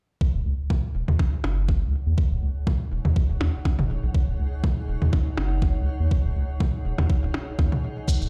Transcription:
0.21 ambient pad D#4, kick
0.33 sub bass D#1, ambient pad C#5
0.38 ambient pad G#4
0.46 sub bass C#2
0.51 ambient pad F#5
0.70 kick, mid tom
0.95 sub bass D#1
1.08 sub bass D#2, mid tom
1.19 kick, percussion blips
1.44 sub bass F#1, percussion blips
1.69 kick
1.82 sub bass C#2
2.07 sub bass D#2
2.18 kick
2.31 sub bass D#1
2.42 sub bass C#2
2.67 kick, mid tom
2.91 sub bass D#1
3.05 sub bass D#2, mid tom
3.16 kick
3.30 sub bass D#1
3.41 sub bass D#2, percussion blips
3.65 kick, percussion blips
3.79 sub bass F#1, mid tom
3.90 sub bass D#1
4.03 sub bass A#1
4.14 kick
4.28 sub bass D#1
4.39 sub bass C#2
4.64 kick, mid tom
4.88 sub bass D#1
5.02 sub bass D#2, mid tom
5.13 kick, percussion blips
5.37 sub bass F#1, percussion blips
5.62 kick
5.76 sub bass C#2
6.00 sub bass D#2
6.11 kick
6.25 sub bass D#1
6.36 sub bass C#2
6.60 kick, mid tom
6.85 sub bass D#1
6.98 sub bass D#2, mid tom, percussion blips
7.10 kick
7.23 sub bass D#1
7.34 percussion blips
7.59 sub bass D#2, kick, percussion blips
7.72 mid tom
8.08 kick, maracas
8.21 sub bass D#1, maracas

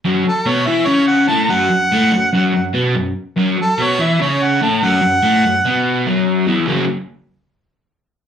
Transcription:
0.05 overdriven electric guitar F#2 F#3
0.26 harmonica A4, muted overdriven electric guitar stroke
0.46 overdriven electric guitar B2 B3, harmonica C#5
0.67 overdriven electric guitar E3 E4, harmonica E5
0.86 overdriven electric guitar C#3 C#4, harmonica C#5
1.08 harmonica F#5
1.28 overdriven electric guitar A2 A3, harmonica A5
1.49 overdriven electric guitar F#2 F#3, harmonica F#5
1.70 overdriven electric guitar F#2
1.92 overdriven electric guitar A2 A3
2.12 overdriven electric guitar F#2
2.33 overdriven electric guitar F#2 F#3
2.54 overdriven electric guitar F#2
2.73 overdriven electric guitar B2 B3
2.95 overdriven electric guitar F#2
3.36 overdriven electric guitar F#2 F#3
3.58 harmonica A4, muted overdriven electric guitar stroke
3.78 overdriven electric guitar B2 B3
3.83 harmonica C#5
3.99 overdriven electric guitar E3 E4, harmonica E5
4.21 overdriven electric guitar C#3 C#4, harmonica C#5
4.44 harmonica F#5
4.62 overdriven electric guitar A2 A3, harmonica A5
4.83 overdriven electric guitar F#2 F#3, harmonica F#5
5.02 overdriven electric guitar F#2
5.23 overdriven electric guitar A2 A3
5.44 overdriven electric guitar F#2
5.65 overdriven electric guitar B2 B3
6.06 overdriven electric guitar F#2 F#3
6.47 overdriven electric guitar E2 E3
6.67 overdriven electric guitar F#2 C#3 F#3 A#3 C#4

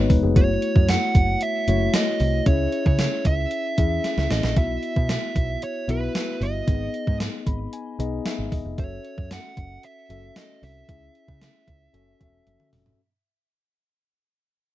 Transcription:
Already playing: tine electric piano G#3 B3 D#4 F#4 B4 C#5 D#5
0.09 picked electric bass E1, tine electric piano D#4 B4, kick, open hi-hat
0.23 picked electric bass F1, tine electric piano B3 G#4
0.35 picked electric bass F#1, tine electric piano A3 E4 F#4 C#5, lead electric guitar C#5, kick, closed hi-hat
0.62 closed hi-hat
0.76 picked electric bass F#2, kick
0.88 lead electric guitar F#5, snare, closed hi-hat, tambourine
1.15 picked electric bass F#1, kick, closed hi-hat
1.41 lead electric guitar E5, closed hi-hat
1.68 picked electric bass F#1, tine electric piano A3 E4 F#4 C#5, closed hi-hat
1.94 lead electric guitar D#5, snare, closed hi-hat, tambourine
2.20 picked electric bass C2, open hi-hat
2.46 picked electric bass C#2, tine electric piano C#4 E4 G#4 E5, lead electric guitar C#5, kick, closed hi-hat
2.72 closed hi-hat
2.86 picked electric bass C#3, lead electric guitar C#5, kick
2.99 snare, closed hi-hat, tambourine
3.25 picked electric bass C#2, lead electric guitar E5, kick, closed hi-hat
3.51 closed hi-hat
3.78 picked electric bass E2, tine electric piano C#4 E4 G#4 E5, kick, closed hi-hat
4.04 snare, closed hi-hat
4.18 picked electric bass C#2, snare
4.30 picked electric bass A1, lead electric guitar D#5, snare, open hi-hat
4.43 picked electric bass A#1, snare
4.56 picked electric bass B1, tine electric piano B3 E4 F#4 E5, lead electric guitar E5, kick, closed hi-hat
4.83 closed hi-hat
4.96 picked electric bass B2, kick
5.09 lead electric guitar E5, snare, closed hi-hat, tambourine
5.36 picked electric bass B1, kick, closed hi-hat
5.62 lead electric guitar C#5, closed hi-hat
5.88 picked electric bass B1, tine electric piano B3 E4 F#4 E5, lead electric guitar B4, closed hi-hat
6.15 snare, closed hi-hat, tambourine
6.41 picked electric bass G1, lead electric guitar D#5, open hi-hat
6.67 picked electric bass G#1, tine electric piano B3 D#4 G#4 D#5, kick, closed hi-hat
6.94 closed hi-hat
7.07 picked electric bass G#2, kick
7.20 snare, closed hi-hat, tambourine
7.47 picked electric bass G#1, tine electric piano B5, kick, closed hi-hat
7.73 tine electric piano G#5, closed hi-hat
7.99 picked electric bass B1, tine electric piano B3 D#4 G#4 D#5, closed hi-hat
8.26 tine electric piano E5, snare, closed hi-hat, tambourine
8.39 picked electric bass G#1
8.52 picked electric bass E1, tine electric piano D#5, kick, open hi-hat
8.65 picked electric bass F1
8.78 picked electric bass F#1, tine electric piano C#4 F#4 A4 E5, lead electric guitar C#5, kick, closed hi-hat
9.05 closed hi-hat
9.18 picked electric bass F#2, kick
9.31 lead electric guitar F#5, snare, closed hi-hat, tambourine
9.57 picked electric bass F#1, kick, closed hi-hat
9.83 lead electric guitar E5, closed hi-hat
10.09 picked electric bass F#1, tine electric piano C#4 F#4 A4 E5, closed hi-hat
10.36 lead electric guitar D#5, snare, closed hi-hat, tambourine
10.63 picked electric bass C2, lead electric guitar E5, open hi-hat
10.88 picked electric bass C#2, tine electric piano C#4 E4 G#4 E5, kick, closed hi-hat
11.15 closed hi-hat
11.28 picked electric bass C#3, kick
11.41 snare, closed hi-hat, tambourine
11.68 picked electric bass C#2, kick, closed hi-hat
11.93 picked electric bass F#1, tine electric piano C#4 F#4 A4 E5, closed hi-hat
12.20 picked electric bass E1, tine electric piano C#4 F#4 A4 E5, kick, closed hi-hat
12.46 picked electric bass F#1, closed hi-hat, high tom
12.60 mid tom
12.73 picked electric bass F1, mid tom, open hi-hat
12.86 floor tom

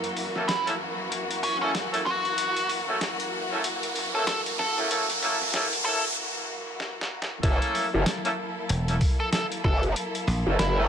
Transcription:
Already playing: string section F#2 E3 A#3 F#4, riser
0.04 closed hi-hat
0.17 open hi-hat
0.35 horn section A3 A#3 C#4 E4 A4, snare
0.48 lead electric guitar E4, snare, closed hi-hat
0.67 horn section A3 A#3 C#4 E4 A4, closed hi-hat
1.12 closed hi-hat
1.31 closed hi-hat
1.43 lead electric guitar C#4, open hi-hat
1.61 horn section A3 A#3 C#4 E4 A4, lead electric guitar C#4
1.75 snare, closed hi-hat
1.93 horn section A3 A#3 C#4 E4 A4, closed hi-hat
2.06 lead electric guitar F#4, snare
2.25 closed hi-hat
2.38 closed hi-hat
2.57 closed hi-hat
2.69 open hi-hat
2.88 horn section A3 A#3 C#4 E4 A4
3.01 snare, closed hi-hat
3.20 closed hi-hat
3.51 horn section A3 A#3 C#4 E4 A4
3.64 closed hi-hat
3.83 closed hi-hat
3.96 open hi-hat
4.14 horn section A3 A#3 C#4 E4 A4, lead electric guitar A4
4.27 lead electric guitar A4, snare, closed hi-hat
4.46 closed hi-hat
4.59 lead electric guitar A4, snare
4.77 horn section A3 A#3 C#4 E4 A4, closed hi-hat
4.90 horn section A3 A#3 C#4 E4 A4, closed hi-hat
5.10 closed hi-hat
5.22 horn section A3 A#3 C#4 E4 A4, open hi-hat
5.41 snare, closed hi-hat
5.43 closed hi-hat
5.45 closed hi-hat
5.47 closed hi-hat
5.49 closed hi-hat
5.50 closed hi-hat
5.52 horn section C#4, snare, closed hi-hat
5.54 horn section A3 A#3 E4 A4, closed hi-hat
5.73 closed hi-hat
5.85 horn section A3 A#3 C#4 E4 A4, lead electric guitar A4
6.05 closed hi-hat
6.07 closed hi-hat
6.13 closed hi-hat
6.80 snare
7.01 snare
7.22 snare
7.42 wobble bass F#1, string section F#3 A#3 E4 A4, horn section A3 A#3 C#4 E4 A4, kick, closed hi-hat
7.53 closed hi-hat
7.62 closed hi-hat
7.75 open hi-hat
7.94 wobble bass F#1, horn section A3 A#3 C#4 E4 A4
8.06 snare, closed hi-hat
8.25 horn section A3 A#3 C#4 E4 A4, closed hi-hat
8.69 slap bass E1, closed hi-hat
8.88 horn section A3 A#3 C#4 E4 A4, closed hi-hat
9.01 kick, open hi-hat
9.20 lead electric guitar A4
9.33 lead electric guitar A4, snare, closed hi-hat
9.52 closed hi-hat
9.64 wobble bass F#1, lead electric guitar A4, kick, snare
9.83 closed hi-hat
9.96 closed hi-hat
10.15 closed hi-hat
10.27 slap bass A#1, open hi-hat
10.46 wobble bass F#1, horn section A3 A#3 C#4 E4 A4
10.59 wobble bass F#1, lead electric guitar E4, snare, closed hi-hat
10.78 horn section A3 A#3 C#4 E4 A4

